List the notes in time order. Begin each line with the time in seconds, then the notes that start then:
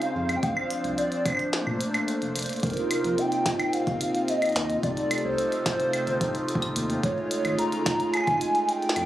Already playing: C#3 G#3 C4 D#4 F4 C5 F5
0.02 closed hi-hat
0.15 F2
0.29 closed hi-hat, claves
0.36 G5
0.43 D2 F3 C4 D4 F5, kick, closed hi-hat
0.57 claves
0.71 closed hi-hat
0.84 C2, closed hi-hat
0.98 D5, closed hi-hat
1.12 closed hi-hat
1.26 C5, kick, closed hi-hat, claves
1.28 claves
1.30 claves
1.32 claves
1.35 claves
1.37 closed hi-hat, claves
1.53 A3 A#3, snare, closed hi-hat
1.67 A#2, claves
1.81 closed hi-hat
1.94 closed hi-hat, claves
2.08 closed hi-hat
2.22 F1, closed hi-hat
2.36 F1, closed hi-hat
2.39 closed hi-hat
2.43 closed hi-hat
2.46 closed hi-hat
2.49 closed hi-hat
2.53 closed hi-hat
2.56 closed hi-hat
2.60 C2, kick, closed hi-hat
2.63 C3 A#3 C4 D#4 F4 A#4, closed hi-hat
2.67 closed hi-hat
2.70 closed hi-hat
2.74 closed hi-hat
2.77 closed hi-hat
2.91 closed hi-hat, claves
3.04 A#1, closed hi-hat
3.18 G5, closed hi-hat
3.32 closed hi-hat
3.46 kick, snare, closed hi-hat
3.60 closed hi-hat, claves
3.73 F5, closed hi-hat
3.87 G1, kick, closed hi-hat
4.01 closed hi-hat
4.15 closed hi-hat
4.28 D#5, closed hi-hat
4.42 closed hi-hat, claves
4.46 closed hi-hat
4.49 closed hi-hat
4.52 D#2, snare, closed hi-hat
4.56 closed hi-hat
4.70 closed hi-hat
4.83 C2 C3 A3 G4 A4 D5, kick, closed hi-hat
4.97 closed hi-hat
5.11 closed hi-hat, claves
5.18 closed hi-hat
5.25 C2 C5
5.38 closed hi-hat
5.52 closed hi-hat
5.66 C5, kick, snare, closed hi-hat
5.80 closed hi-hat
5.93 closed hi-hat, claves
6.07 G1, closed hi-hat
6.21 kick, closed hi-hat
6.35 closed hi-hat
6.49 closed hi-hat
6.55 kick
6.62 closed hi-hat, claves
6.76 D#2, closed hi-hat
6.90 closed hi-hat
7.03 C#2 C#3 G#3 C#5, kick, closed hi-hat
7.31 closed hi-hat
7.45 G#1, closed hi-hat, claves
7.59 A#5, closed hi-hat
7.72 closed hi-hat
7.86 kick, snare, closed hi-hat
8.00 closed hi-hat
8.14 G#5, closed hi-hat, claves
8.17 claves
8.21 claves
8.24 G#1, kick, closed hi-hat, claves
8.27 claves
8.31 claves
8.34 claves
8.38 closed hi-hat, claves
8.55 closed hi-hat
8.69 G5, closed hi-hat
8.82 closed hi-hat
8.89 snare
8.96 F2, closed hi-hat, claves